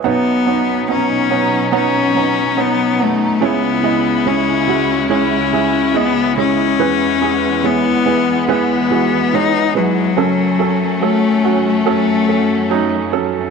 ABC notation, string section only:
X:1
M:4/4
L:1/8
Q:1/4=71
K:Bmix
V:1 name="String section" clef=bass
[B,,F,CD]8 | [C,,C,G,E]8 | [E,,E,G,B,]8 | [F,,F,A,C]8 |]